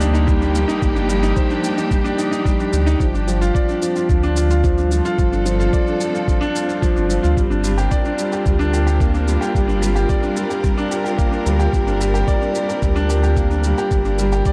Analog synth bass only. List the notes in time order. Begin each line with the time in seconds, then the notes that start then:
Already playing: D2
0.82 G1
2.73 D2
3.00 G1
4.10 D2
5.19 G1
6.97 G1
7.24 D2
7.38 G1
8.46 D2
9.55 G1
11.46 D2
11.74 G1
12.82 D2
13.91 G1